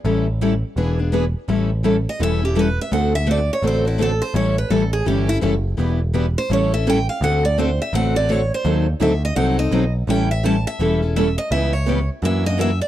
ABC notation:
X:1
M:4/4
L:1/16
Q:"Swing" 1/4=168
K:Amix
V:1 name="Steel-string acoustic guitar"
z16 | z6 ^d2 e2 G2 B2 e2 | f2 e2 d2 c2 =c2 E2 A2 c2 | c2 B2 A2 ^G2 =G2 E2 z4 |
z6 =c2 ^c2 e2 g2 =f2 | f2 d2 =c2 e2 f2 d2 ^c2 =c2- | =c2 z2 e2 ^d2 f2 d4 z2 | g2 e2 a2 e4 z2 e2 ^d2 |
e2 c4 z2 e2 ^d2 e2 =d2 |]
V:2 name="Steel-string acoustic guitar"
[E,G,CEA]2 z2 [E,G,CEA] z3 [E,B,D^G]2 [B,DG]2 [E,B,DG] z3 | [E,G,CEA]2 z2 [E,G,CEA] z3 [E,G,CEA]2 [CEA]2 [E,G,CEA] z3 | [D,A,=CFA]2 z2 [D,A,CFA] z3 [D,A,CFA]2 [CFA]2 [D,A,CFA] z3 | [E,G,CEA]2 z2 [E,G,CEA] z3 [E,G,CEA]2 [CEA]2 [E,G,CEA] z3 |
[E,B,DG]2 z2 [E,B,DG] z3 [E,G,CEA]2 [CEA]2 [E,G,CEA] z3 | [D,A,=CFA]2 z2 [D,A,CFA] z3 [D,A,CFA]2 [CFA]2 [D,A,CFA] z3 | [^D,F,^B,^DA]2 z2 [D,F,B,DA] z3 [D,F,B,DA]2 [B,DA]2 [D,F,B,DA] z3 | [E,G,CEA]2 z2 [E,G,CEA] z3 [E,G,CEA]2 [CEA]2 [E,G,CEA] z3 |
[C,E,B,CG]2 z2 [C,E,B,CG] z3 [E,^A,DF]2 [A,DF]2 [E,A,DF] z3 |]
V:3 name="Steel-string acoustic guitar"
[E,G,CEA]2 z2 [E,G,CEA] z3 [E,B,D^GB]2 z2 [E,B,DGB] z3 | [E,G,CEA]2 z2 [E,G,CEA] z3 [E,G,CEA]2 z2 [E,G,CEA] z3 | [D,A,=CFA]2 z2 [D,A,CFA] z3 [D,A,CFA]2 z2 [D,A,CFA] z3 | [E,G,CEA]2 z2 [E,G,CEA] z3 [E,G,CEA]2 z2 [E,G,CEA] z3 |
[E,G,DEB]2 z2 [E,G,DEB] z3 [E,G,CEA]2 z2 [E,G,CEA] z3 | [D,A,=CFA]2 z2 [D,A,CFA] z3 [D,A,CFA]2 z2 [D,A,CFA] z3 | [^D,F,^B,^DA]2 z2 [D,F,B,DA] z3 [D,F,B,DA]2 z2 [D,F,B,DA] z3 | [E,G,CEA]2 z2 [E,G,CEA] z3 [E,G,CEA]2 z2 [E,G,CEA] z3 |
[C,G,B,EB]2 z2 [C,G,B,EB] z3 [F,DE^A]2 z2 [F,DEA] z3 |]
V:4 name="Picked electric bass" clef=bass
A,,,8 E,,,8 | A,,,8 E,,,8 | D,,8 A,,,8 | A,,,4 A,,,4 G,,,4 F,,,4 |
E,,,8 A,,,8 | D,,8 A,,,8 | ^D,,4 =D,,4 ^B,,,4 =B,,,4 | A,,,8 E,,,8 |
C,,8 F,,8 |]